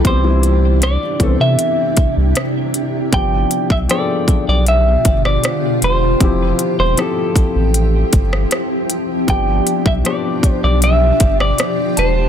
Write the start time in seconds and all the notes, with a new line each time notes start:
Already playing: D4 G4
0.04 C2 C3 E3 B3 C4 E4 G4 C5, kick, closed hi-hat
0.24 E3 G3 C4 E4
0.43 closed hi-hat
0.82 D5, cross-stick, closed hi-hat
1.20 C2 E3 B3 C4 A4, kick, closed hi-hat
1.29 C5
1.40 C3 E5
1.59 closed hi-hat
1.97 C2, kick, closed hi-hat
2.17 C2
2.35 cross-stick, closed hi-hat
2.74 closed hi-hat
3.12 G1 B2 D3 F3 B3 D4 F4 G4 G5, kick, closed hi-hat
3.51 closed hi-hat
3.70 B1 E5, kick
3.89 F3 B3 D4 G#4 D5 G5, cross-stick, closed hi-hat
3.98 A4
4.28 B1, kick, closed hi-hat
4.48 B1 D5
4.67 E5, closed hi-hat
5.05 G1, kick, closed hi-hat
5.25 D5, cross-stick
5.44 cross-stick, closed hi-hat
5.82 E1 C5, closed hi-hat
6.20 F1 E3 F3 C4 E4 G4, kick, closed hi-hat
6.27 F3
6.59 closed hi-hat
6.79 E1 C5
6.97 F3 C4 E4 G4 A4, cross-stick, closed hi-hat
7.36 A1, kick, closed hi-hat
7.55 A1
7.74 closed hi-hat
8.13 G1, kick, closed hi-hat
8.33 cross-stick
8.51 cross-stick, closed hi-hat
8.90 closed hi-hat
9.27 G1 B2 F3 B3 D4 G4 G5, kick, closed hi-hat
9.67 closed hi-hat
9.86 B1 E5, kick
10.04 F3 B3 D4 G4 D5, cross-stick, closed hi-hat
10.43 B1, kick, closed hi-hat
10.52 C5
10.63 B1 D5
10.82 E5, closed hi-hat
11.20 G1, kick, closed hi-hat
11.40 D5, cross-stick
11.58 cross-stick, closed hi-hat
11.97 E1 C5 A5, closed hi-hat